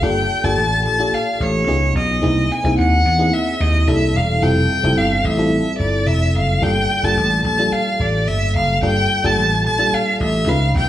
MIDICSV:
0, 0, Header, 1, 4, 480
1, 0, Start_track
1, 0, Tempo, 549602
1, 28, Time_signature, 4, 2, 24, 8
1, 9510, End_track
2, 0, Start_track
2, 0, Title_t, "Violin"
2, 0, Program_c, 0, 40
2, 24, Note_on_c, 0, 79, 93
2, 385, Note_on_c, 0, 81, 93
2, 398, Note_off_c, 0, 79, 0
2, 740, Note_off_c, 0, 81, 0
2, 745, Note_on_c, 0, 81, 87
2, 998, Note_on_c, 0, 77, 76
2, 1011, Note_off_c, 0, 81, 0
2, 1242, Note_on_c, 0, 73, 85
2, 1255, Note_off_c, 0, 77, 0
2, 1708, Note_off_c, 0, 73, 0
2, 1714, Note_on_c, 0, 75, 85
2, 2198, Note_on_c, 0, 80, 79
2, 2211, Note_off_c, 0, 75, 0
2, 2426, Note_off_c, 0, 80, 0
2, 2431, Note_on_c, 0, 78, 89
2, 2911, Note_on_c, 0, 76, 82
2, 2924, Note_off_c, 0, 78, 0
2, 3148, Note_on_c, 0, 75, 84
2, 3161, Note_off_c, 0, 76, 0
2, 3386, Note_on_c, 0, 76, 85
2, 3399, Note_off_c, 0, 75, 0
2, 3635, Note_on_c, 0, 77, 84
2, 3648, Note_off_c, 0, 76, 0
2, 3865, Note_on_c, 0, 79, 102
2, 3878, Note_off_c, 0, 77, 0
2, 4345, Note_on_c, 0, 77, 86
2, 4358, Note_off_c, 0, 79, 0
2, 4581, Note_on_c, 0, 76, 83
2, 4594, Note_off_c, 0, 77, 0
2, 5045, Note_off_c, 0, 76, 0
2, 5050, Note_on_c, 0, 74, 76
2, 5298, Note_on_c, 0, 76, 86
2, 5311, Note_off_c, 0, 74, 0
2, 5499, Note_off_c, 0, 76, 0
2, 5499, Note_on_c, 0, 76, 61
2, 5551, Note_on_c, 0, 77, 79
2, 5564, Note_off_c, 0, 76, 0
2, 5783, Note_on_c, 0, 79, 91
2, 5796, Note_off_c, 0, 77, 0
2, 6151, Note_on_c, 0, 81, 88
2, 6164, Note_off_c, 0, 79, 0
2, 6501, Note_off_c, 0, 81, 0
2, 6506, Note_on_c, 0, 81, 88
2, 6746, Note_on_c, 0, 77, 86
2, 6759, Note_off_c, 0, 81, 0
2, 6994, Note_on_c, 0, 74, 77
2, 7007, Note_off_c, 0, 77, 0
2, 7228, Note_on_c, 0, 76, 89
2, 7241, Note_off_c, 0, 74, 0
2, 7468, Note_off_c, 0, 76, 0
2, 7476, Note_on_c, 0, 77, 90
2, 7696, Note_off_c, 0, 77, 0
2, 7718, Note_on_c, 0, 79, 100
2, 8080, Note_on_c, 0, 81, 97
2, 8094, Note_off_c, 0, 79, 0
2, 8434, Note_off_c, 0, 81, 0
2, 8443, Note_on_c, 0, 81, 89
2, 8681, Note_on_c, 0, 77, 85
2, 8694, Note_off_c, 0, 81, 0
2, 8912, Note_off_c, 0, 77, 0
2, 8918, Note_on_c, 0, 76, 85
2, 9159, Note_on_c, 0, 77, 92
2, 9172, Note_off_c, 0, 76, 0
2, 9394, Note_off_c, 0, 77, 0
2, 9408, Note_on_c, 0, 79, 91
2, 9510, Note_off_c, 0, 79, 0
2, 9510, End_track
3, 0, Start_track
3, 0, Title_t, "FM electric piano"
3, 0, Program_c, 1, 5
3, 0, Control_c, 1, 64, 127
3, 0, Note_on_c, 1, 58, 67
3, 0, Note_on_c, 1, 62, 61
3, 0, Note_on_c, 1, 65, 61
3, 0, Note_on_c, 1, 67, 62
3, 0, Note_on_c, 1, 69, 71
3, 25, Note_off_c, 1, 58, 0
3, 25, Note_off_c, 1, 65, 0
3, 25, Note_on_c, 1, 58, 61
3, 25, Note_on_c, 1, 65, 61
3, 26, Note_off_c, 1, 62, 0
3, 26, Note_on_c, 1, 62, 57
3, 31, Note_off_c, 1, 67, 0
3, 31, Note_on_c, 1, 67, 58
3, 33, Note_off_c, 1, 69, 0
3, 33, Note_on_c, 1, 69, 69
3, 242, Note_off_c, 1, 58, 0
3, 242, Note_off_c, 1, 65, 0
3, 243, Note_off_c, 1, 62, 0
3, 245, Note_off_c, 1, 67, 0
3, 247, Note_off_c, 1, 69, 0
3, 379, Note_on_c, 1, 58, 64
3, 384, Note_on_c, 1, 62, 60
3, 386, Note_on_c, 1, 65, 63
3, 388, Note_on_c, 1, 69, 75
3, 391, Note_on_c, 1, 67, 62
3, 672, Note_off_c, 1, 58, 0
3, 674, Note_off_c, 1, 62, 0
3, 675, Note_off_c, 1, 65, 0
3, 676, Note_off_c, 1, 69, 0
3, 677, Note_off_c, 1, 67, 0
3, 861, Note_on_c, 1, 58, 65
3, 867, Note_on_c, 1, 65, 60
3, 869, Note_on_c, 1, 62, 63
3, 873, Note_on_c, 1, 67, 63
3, 877, Note_on_c, 1, 69, 73
3, 1441, Note_off_c, 1, 58, 0
3, 1444, Note_off_c, 1, 62, 0
3, 1444, Note_off_c, 1, 65, 0
3, 1446, Note_off_c, 1, 67, 0
3, 1448, Note_off_c, 1, 69, 0
3, 1458, Note_on_c, 1, 59, 74
3, 1465, Note_on_c, 1, 61, 65
3, 1466, Note_on_c, 1, 63, 65
3, 1469, Note_on_c, 1, 65, 64
3, 1469, Note_on_c, 1, 68, 76
3, 1478, Control_c, 1, 64, 0
3, 1644, Control_c, 1, 64, 127
3, 1847, Note_off_c, 1, 59, 0
3, 1850, Note_off_c, 1, 61, 0
3, 1851, Note_off_c, 1, 63, 0
3, 1852, Note_off_c, 1, 68, 0
3, 1853, Note_off_c, 1, 65, 0
3, 1936, Note_on_c, 1, 58, 65
3, 1938, Note_on_c, 1, 60, 60
3, 1944, Note_on_c, 1, 63, 60
3, 1945, Note_on_c, 1, 64, 60
3, 1945, Note_on_c, 1, 68, 72
3, 1959, Control_c, 1, 64, 0
3, 2090, Control_c, 1, 64, 127
3, 2158, Note_off_c, 1, 58, 0
3, 2159, Note_off_c, 1, 60, 0
3, 2162, Note_off_c, 1, 63, 0
3, 2162, Note_off_c, 1, 64, 0
3, 2162, Note_off_c, 1, 68, 0
3, 2303, Note_on_c, 1, 58, 65
3, 2305, Note_on_c, 1, 60, 62
3, 2310, Note_on_c, 1, 63, 64
3, 2315, Note_on_c, 1, 64, 63
3, 2317, Note_on_c, 1, 68, 71
3, 2593, Note_off_c, 1, 58, 0
3, 2594, Note_off_c, 1, 60, 0
3, 2597, Note_off_c, 1, 63, 0
3, 2599, Note_off_c, 1, 64, 0
3, 2600, Note_off_c, 1, 68, 0
3, 2780, Note_on_c, 1, 58, 71
3, 2783, Note_on_c, 1, 60, 61
3, 2785, Note_on_c, 1, 63, 61
3, 2791, Note_on_c, 1, 64, 65
3, 2794, Note_on_c, 1, 68, 78
3, 3360, Note_off_c, 1, 58, 0
3, 3362, Note_off_c, 1, 60, 0
3, 3362, Note_off_c, 1, 63, 0
3, 3365, Note_off_c, 1, 64, 0
3, 3367, Note_off_c, 1, 68, 0
3, 3384, Note_on_c, 1, 58, 66
3, 3385, Note_on_c, 1, 55, 67
3, 3386, Note_on_c, 1, 62, 62
3, 3387, Note_on_c, 1, 64, 69
3, 3394, Note_on_c, 1, 69, 76
3, 3397, Control_c, 1, 64, 0
3, 3537, Control_c, 1, 64, 127
3, 3770, Note_off_c, 1, 55, 0
3, 3770, Note_off_c, 1, 58, 0
3, 3771, Note_off_c, 1, 62, 0
3, 3771, Note_off_c, 1, 64, 0
3, 3775, Note_off_c, 1, 69, 0
3, 3859, Note_on_c, 1, 55, 63
3, 3865, Note_on_c, 1, 60, 57
3, 3866, Note_on_c, 1, 64, 59
3, 3866, Note_on_c, 1, 65, 58
3, 3867, Note_on_c, 1, 69, 74
3, 3878, Control_c, 1, 64, 0
3, 4009, Control_c, 1, 64, 127
3, 4079, Note_off_c, 1, 55, 0
3, 4082, Note_off_c, 1, 60, 0
3, 4083, Note_off_c, 1, 64, 0
3, 4083, Note_off_c, 1, 65, 0
3, 4083, Note_off_c, 1, 69, 0
3, 4219, Note_on_c, 1, 55, 68
3, 4222, Note_on_c, 1, 60, 66
3, 4228, Note_on_c, 1, 64, 64
3, 4230, Note_on_c, 1, 69, 74
3, 4232, Note_on_c, 1, 65, 60
3, 4512, Note_off_c, 1, 55, 0
3, 4513, Note_off_c, 1, 60, 0
3, 4516, Note_off_c, 1, 64, 0
3, 4517, Note_off_c, 1, 69, 0
3, 4518, Note_off_c, 1, 65, 0
3, 4691, Note_on_c, 1, 55, 65
3, 4694, Note_on_c, 1, 60, 59
3, 4698, Note_on_c, 1, 64, 63
3, 4704, Note_on_c, 1, 65, 60
3, 4708, Note_on_c, 1, 69, 72
3, 5276, Note_off_c, 1, 55, 0
3, 5277, Note_off_c, 1, 60, 0
3, 5279, Note_off_c, 1, 64, 0
3, 5282, Note_off_c, 1, 65, 0
3, 5284, Note_off_c, 1, 69, 0
3, 5775, Note_on_c, 1, 55, 61
3, 5777, Note_on_c, 1, 58, 56
3, 5784, Note_on_c, 1, 62, 54
3, 5785, Note_on_c, 1, 69, 68
3, 5787, Note_on_c, 1, 65, 55
3, 5799, Control_c, 1, 64, 0
3, 5940, Control_c, 1, 64, 127
3, 5997, Note_off_c, 1, 55, 0
3, 5998, Note_off_c, 1, 58, 0
3, 6002, Note_off_c, 1, 62, 0
3, 6002, Note_off_c, 1, 69, 0
3, 6003, Note_off_c, 1, 65, 0
3, 6146, Note_on_c, 1, 55, 64
3, 6146, Note_on_c, 1, 58, 60
3, 6150, Note_on_c, 1, 62, 60
3, 6153, Note_on_c, 1, 69, 72
3, 6154, Note_on_c, 1, 65, 58
3, 6435, Note_off_c, 1, 55, 0
3, 6435, Note_off_c, 1, 58, 0
3, 6437, Note_off_c, 1, 62, 0
3, 6438, Note_off_c, 1, 69, 0
3, 6439, Note_off_c, 1, 65, 0
3, 6622, Note_on_c, 1, 55, 68
3, 6627, Note_on_c, 1, 58, 63
3, 6629, Note_on_c, 1, 62, 63
3, 6632, Note_on_c, 1, 65, 59
3, 6633, Note_on_c, 1, 69, 71
3, 7201, Note_off_c, 1, 55, 0
3, 7203, Note_off_c, 1, 58, 0
3, 7204, Note_off_c, 1, 62, 0
3, 7206, Note_off_c, 1, 65, 0
3, 7206, Note_off_c, 1, 69, 0
3, 7705, Note_on_c, 1, 55, 63
3, 7705, Note_on_c, 1, 58, 59
3, 7706, Note_on_c, 1, 62, 58
3, 7712, Note_on_c, 1, 65, 59
3, 7713, Note_on_c, 1, 69, 71
3, 7923, Note_off_c, 1, 55, 0
3, 7923, Note_off_c, 1, 58, 0
3, 7923, Note_off_c, 1, 62, 0
3, 7926, Note_off_c, 1, 65, 0
3, 7927, Note_off_c, 1, 69, 0
3, 8066, Note_on_c, 1, 55, 68
3, 8069, Note_on_c, 1, 58, 63
3, 8069, Note_on_c, 1, 62, 59
3, 8075, Note_on_c, 1, 65, 60
3, 8076, Note_on_c, 1, 69, 81
3, 8355, Note_off_c, 1, 55, 0
3, 8356, Note_off_c, 1, 58, 0
3, 8357, Note_off_c, 1, 62, 0
3, 8359, Note_off_c, 1, 65, 0
3, 8360, Note_off_c, 1, 69, 0
3, 8543, Note_on_c, 1, 58, 61
3, 8545, Note_on_c, 1, 55, 73
3, 8547, Note_on_c, 1, 62, 64
3, 8551, Note_on_c, 1, 65, 65
3, 8554, Note_on_c, 1, 69, 76
3, 9122, Note_off_c, 1, 58, 0
3, 9123, Note_off_c, 1, 55, 0
3, 9124, Note_off_c, 1, 62, 0
3, 9126, Note_off_c, 1, 65, 0
3, 9127, Note_off_c, 1, 69, 0
3, 9148, Note_on_c, 1, 56, 76
3, 9149, Note_on_c, 1, 61, 68
3, 9149, Note_on_c, 1, 63, 67
3, 9149, Note_on_c, 1, 65, 64
3, 9159, Control_c, 1, 64, 0
3, 9159, Note_on_c, 1, 71, 82
3, 9298, Control_c, 1, 64, 127
3, 9510, Note_off_c, 1, 56, 0
3, 9510, Note_off_c, 1, 61, 0
3, 9510, Note_off_c, 1, 63, 0
3, 9510, Note_off_c, 1, 65, 0
3, 9510, Note_off_c, 1, 71, 0
3, 9510, End_track
4, 0, Start_track
4, 0, Title_t, "Slap bass"
4, 0, Program_c, 2, 36
4, 17, Note_on_c, 2, 31, 99
4, 224, Note_off_c, 2, 31, 0
4, 381, Note_on_c, 2, 31, 86
4, 502, Note_off_c, 2, 31, 0
4, 502, Note_on_c, 2, 33, 80
4, 745, Note_off_c, 2, 33, 0
4, 745, Note_on_c, 2, 34, 75
4, 949, Note_off_c, 2, 34, 0
4, 1224, Note_on_c, 2, 33, 79
4, 1429, Note_off_c, 2, 33, 0
4, 1460, Note_on_c, 2, 37, 85
4, 1666, Note_off_c, 2, 37, 0
4, 1703, Note_on_c, 2, 35, 87
4, 1908, Note_off_c, 2, 35, 0
4, 1948, Note_on_c, 2, 36, 90
4, 2151, Note_off_c, 2, 36, 0
4, 2305, Note_on_c, 2, 36, 94
4, 2408, Note_off_c, 2, 36, 0
4, 2428, Note_on_c, 2, 39, 83
4, 2631, Note_off_c, 2, 39, 0
4, 2667, Note_on_c, 2, 40, 86
4, 2870, Note_off_c, 2, 40, 0
4, 3146, Note_on_c, 2, 39, 82
4, 3350, Note_off_c, 2, 39, 0
4, 3382, Note_on_c, 2, 36, 95
4, 3587, Note_off_c, 2, 36, 0
4, 3623, Note_on_c, 2, 28, 79
4, 3828, Note_off_c, 2, 28, 0
4, 3863, Note_on_c, 2, 29, 92
4, 4068, Note_off_c, 2, 29, 0
4, 4223, Note_on_c, 2, 29, 96
4, 4326, Note_off_c, 2, 29, 0
4, 4343, Note_on_c, 2, 31, 87
4, 4548, Note_off_c, 2, 31, 0
4, 4579, Note_on_c, 2, 33, 74
4, 4887, Note_off_c, 2, 33, 0
4, 5060, Note_on_c, 2, 31, 77
4, 5266, Note_off_c, 2, 31, 0
4, 5303, Note_on_c, 2, 29, 76
4, 5508, Note_off_c, 2, 29, 0
4, 5546, Note_on_c, 2, 30, 88
4, 5750, Note_off_c, 2, 30, 0
4, 5782, Note_on_c, 2, 31, 91
4, 5987, Note_off_c, 2, 31, 0
4, 6140, Note_on_c, 2, 31, 85
4, 6245, Note_off_c, 2, 31, 0
4, 6261, Note_on_c, 2, 33, 75
4, 6467, Note_off_c, 2, 33, 0
4, 6499, Note_on_c, 2, 34, 82
4, 6706, Note_off_c, 2, 34, 0
4, 6982, Note_on_c, 2, 33, 75
4, 7228, Note_off_c, 2, 33, 0
4, 7228, Note_on_c, 2, 31, 73
4, 7431, Note_off_c, 2, 31, 0
4, 7467, Note_on_c, 2, 30, 75
4, 7670, Note_off_c, 2, 30, 0
4, 7704, Note_on_c, 2, 31, 91
4, 7909, Note_off_c, 2, 31, 0
4, 8069, Note_on_c, 2, 31, 90
4, 8191, Note_off_c, 2, 31, 0
4, 8191, Note_on_c, 2, 33, 80
4, 8434, Note_off_c, 2, 33, 0
4, 8434, Note_on_c, 2, 34, 75
4, 8635, Note_off_c, 2, 34, 0
4, 8910, Note_on_c, 2, 33, 79
4, 9113, Note_off_c, 2, 33, 0
4, 9148, Note_on_c, 2, 37, 85
4, 9351, Note_off_c, 2, 37, 0
4, 9389, Note_on_c, 2, 35, 90
4, 9510, Note_off_c, 2, 35, 0
4, 9510, End_track
0, 0, End_of_file